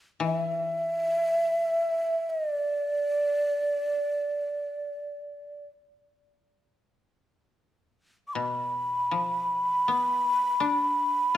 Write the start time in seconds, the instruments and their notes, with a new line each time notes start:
0.20 koto E3, shakuhachi E5
2.30 shakuhachi D#5
2.50 shakuhachi D5
8.28 shakuhachi D6
8.34 koto B2, shakuhachi B5
9.11 koto F3
9.88 koto B3
10.60 koto D4